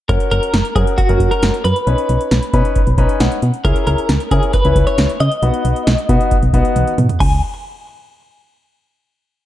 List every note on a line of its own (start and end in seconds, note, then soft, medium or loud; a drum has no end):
0.09 0.18 F#1 loud
0.09 0.48 C#4 medium
0.09 0.48 F#4 medium
0.09 0.48 A#4 medium
0.09 0.15 A#4 medium
0.09 kick loud
0.09 closed hi-hat medium
0.20 closed hi-hat medium
0.31 0.40 F#1 loud
0.31 0.75 A#4 medium
0.31 closed hi-hat medium
0.43 closed hi-hat medium
0.54 0.62 F#1 loud
0.54 snare loud
0.54 closed hi-hat medium
0.65 closed hi-hat medium
0.76 0.84 F#2 medium
0.76 0.96 C#4 medium
0.76 0.96 F#4 medium
0.76 0.82 G#4 medium
0.76 0.96 A#4 medium
0.76 kick medium
0.76 closed hi-hat medium
0.87 closed hi-hat soft
0.98 1.29 F#4 medium
0.98 kick medium
0.98 closed hi-hat medium
1.09 1.18 F#1 medium
1.09 1.55 C#4 medium
1.09 1.55 F#4 medium
1.09 1.55 A#4 medium
1.09 closed hi-hat soft
1.20 1.29 F#1 loud
1.20 kick medium
1.20 closed hi-hat medium
1.31 1.62 A#4 medium
1.31 closed hi-hat soft
1.43 1.51 F#1 medium
1.43 snare loud
1.43 closed hi-hat medium
1.54 closed hi-hat medium
1.64 1.73 F#2 medium
1.64 2.94 B4 loud
1.64 closed hi-hat medium
1.76 closed hi-hat medium
1.87 1.95 B1 loud
1.87 2.26 C#4 medium
1.87 2.26 D#4 medium
1.87 2.26 B4 medium
1.87 closed hi-hat medium
1.98 closed hi-hat medium
2.09 2.18 B1 medium
2.09 closed hi-hat medium
2.21 closed hi-hat medium
2.31 2.40 B1 medium
2.31 snare loud
2.31 closed hi-hat medium
2.43 closed hi-hat medium
2.54 2.62 B2 loud
2.54 2.80 C#4 medium
2.54 2.80 D#4 medium
2.54 2.80 B4 loud
2.54 kick medium
2.54 closed hi-hat medium
2.65 closed hi-hat soft
2.76 kick medium
2.76 closed hi-hat medium
2.87 2.95 B1 medium
2.87 closed hi-hat soft
2.98 3.06 B1 loud
2.98 3.37 C#4 medium
2.98 3.37 D#4 medium
2.98 3.37 B4 loud
2.98 3.08 A#5 medium
2.98 kick medium
2.98 closed hi-hat medium
3.09 3.20 G#5 medium
3.09 closed hi-hat medium
3.20 3.29 B1 medium
3.20 3.62 F#5 medium
3.20 snare loud
3.20 closed hi-hat medium
3.32 closed hi-hat soft
3.42 3.51 B2 medium
3.42 closed hi-hat medium
3.54 closed hi-hat medium
3.65 3.73 C#2 loud
3.65 4.04 C#4 medium
3.65 4.04 E4 medium
3.65 4.04 G#4 medium
3.65 3.86 A#4 medium
3.65 kick loud
3.65 closed hi-hat medium
3.76 closed hi-hat medium
3.87 3.96 C#2 loud
3.87 4.31 A#4 medium
3.87 closed hi-hat medium
3.98 closed hi-hat medium
4.09 4.18 C#2 loud
4.09 snare loud
4.09 closed hi-hat medium
4.20 closed hi-hat medium
4.31 4.40 C#3 loud
4.31 4.51 C#4 medium
4.31 4.51 E4 medium
4.31 4.53 G#4 medium
4.31 4.51 A#4 medium
4.31 kick medium
4.31 closed hi-hat medium
4.43 closed hi-hat soft
4.53 4.87 B4 loud
4.53 kick medium
4.53 closed hi-hat medium
4.65 4.73 C#2 loud
4.65 5.11 C#4 medium
4.65 5.11 E4 medium
4.65 5.11 B4 medium
4.65 closed hi-hat soft
4.76 4.84 C#2 loud
4.76 kick medium
4.76 closed hi-hat medium
4.87 5.20 C#5 loud
4.87 closed hi-hat soft
4.98 5.07 C#2 loud
4.98 snare loud
4.98 closed hi-hat medium
5.10 closed hi-hat medium
5.20 5.29 C#3 medium
5.20 6.50 D#5 loud
5.20 closed hi-hat medium
5.32 closed hi-hat medium
5.42 5.51 B1 loud
5.42 5.82 B3 medium
5.42 5.82 D#4 medium
5.42 5.82 F#4 medium
5.42 closed hi-hat medium
5.54 closed hi-hat medium
5.65 5.73 B1 loud
5.65 closed hi-hat medium
5.76 closed hi-hat medium
5.87 5.96 B1 loud
5.87 snare loud
5.87 closed hi-hat medium
5.98 closed hi-hat medium
6.09 6.18 B2 loud
6.09 6.35 B3 medium
6.09 6.35 D#4 medium
6.09 6.35 F#4 loud
6.09 kick medium
6.09 closed hi-hat medium
6.21 closed hi-hat soft
6.31 kick medium
6.31 closed hi-hat medium
6.42 6.51 B1 loud
6.42 closed hi-hat soft
6.53 6.62 B1 loud
6.53 6.93 B3 medium
6.53 6.93 D#4 medium
6.53 6.93 F#4 medium
6.53 kick medium
6.53 closed hi-hat medium
6.65 closed hi-hat medium
6.76 6.84 B1 loud
6.76 closed hi-hat medium
6.76 high tom medium
6.87 closed hi-hat soft
6.98 7.07 B2 loud
6.98 closed hi-hat medium
6.98 mid tom medium
7.09 closed hi-hat medium
7.09 floor tom medium
7.20 7.41 C#2 loud
7.20 7.41 G#5 medium
7.20 kick loud
7.20 crash medium